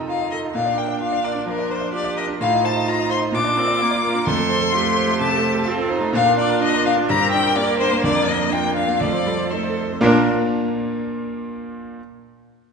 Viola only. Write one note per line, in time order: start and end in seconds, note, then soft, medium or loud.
0.00 0.53 D#4 medium
0.56 2.38 D4 medium
2.41 3.36 D#4 medium
3.35 3.59 D4 medium
3.58 3.84 C4 loud
3.82 4.05 A#3 medium
4.05 4.30 A#3 medium
4.28 4.74 A3 medium
4.75 5.70 A3 medium
5.68 5.92 C4 loud
5.91 6.17 D#4 medium
6.15 7.10 D4 medium
7.09 7.58 C4 loud
7.56 9.01 A#3 medium
9.02 9.10 A3 medium
9.26 9.34 G3 medium
9.52 9.81 A3 medium
10.03 10.30 D4 loud